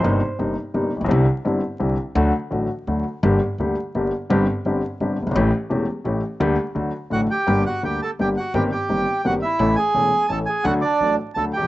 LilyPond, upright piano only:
\new Staff \with { instrumentName = "Upright piano" } { \clef bass \time 3/4 \key g \minor \tempo 4 = 170 <g,, g, c g bes ees'>8 r8 <g,, g, c g bes ees'>8 r8 <g,, g, c g bes ees'>8 r32 a,,32 bes,,32 b,,32 | <c, c d g c' e'>8 r8 <g,, g, d g c' e'>8 r8 <c, c d g c' e'>8 r8 | <d, d fis a fis'>8 r8 <a,, a, d fis a fis'>8 r8 <d, d fis a fis'>8 r8 | <g,, g, d g bes g'>8 r8 <d, d g bes g'>8 r8 <g,, g, d g bes g'>8 r8 |
<g,, g, d g c' g'>8 r8 <g,, g, d g c' g'>8 r8 <g,, g, d g c' g'>8 r32 fis,,32 g,,32 aes,,32 | <a,, a, e a cis' g'>8 r8 <e,, e, e a cis' g'>8 r8 <a,, a, e a cis' g'>8 r8 | <d, d g bes g'>8 r8 <d, d fis a fis'>8 r8 <a,, a, d fis a fis'>8 r8 | <g,, g, d g bes g'>8 r8 <d, d g bes g'>8 r8 <g,, g, d g bes g'>8 r8 |
<g,, g, ees bes c' g'>8 r8 <g,, g, ees bes c' g'>8 r8 <g,, g, ees bes c' g'>8 r8 | <a,, a, e a cis' a'>8 r8 <e,, e, e a cis' a'>8 r8 <a,, a, e a cis' a'>8 r8 | <d, d fis a d' a'>8 r8 <a,, a, fis a d' a'>8 r8 <d, d fis a d' a'>8 r32 e,32 f,32 r32 | }